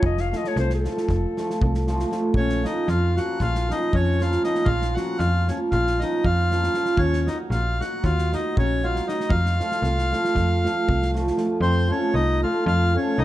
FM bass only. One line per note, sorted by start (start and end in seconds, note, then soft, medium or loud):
0.03 0.34 F1 loud
0.56 0.88 C2 loud
1.10 1.27 F1 medium
1.62 2.06 C2 medium
2.34 2.66 A#1 medium
2.88 3.20 F2 loud
3.41 3.73 A#1 medium
3.94 4.38 F2 medium
4.66 4.98 A#1 medium
5.20 5.52 F2 medium
5.73 6.04 A#1 medium
6.25 6.69 F2 medium
6.97 7.29 D#2 medium
7.50 7.82 A#1 medium
8.04 8.36 D#2 medium
8.57 9.01 A#1 medium
9.30 9.62 F2 medium
9.82 10.14 C2 medium
10.35 10.67 F2 medium
10.88 11.32 C2 medium
11.61 11.92 F2 medium
12.14 12.45 C2 medium
12.66 12.98 F2 loud
13.18 13.24 C2 loud